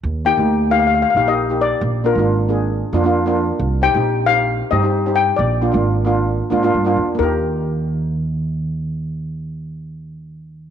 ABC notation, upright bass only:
X:1
M:4/4
L:1/16
Q:"Swing 16ths" 1/4=134
K:Eb
V:1 name="Upright bass" clef=bass
E,,3 D,,6- D,, B,,,6 | B,,,3 A,,,6- A,,, F,,6 | C,,3 B,,,6- B,,, G,,6 | B,,,3 A,,,6- A,,, A,,2 G,,2 F,,2 |
E,,16- | E,,16 |]